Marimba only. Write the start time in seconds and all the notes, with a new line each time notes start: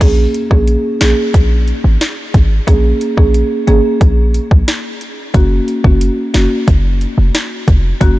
0.01 A#3 C#4 G#4
0.51 A#3 C#4 G#4
1.01 A#3 C#4 G#4
2.67 A#3 C#4 G#4
3.17 A#3 C#4 G#4
3.67 A#3 C#4 G#4
5.34 A#3 C#4 F#4
5.84 A#3 C#4 F#4
6.34 A#3 C#4 F#4
8.01 A#3 C#4 F#4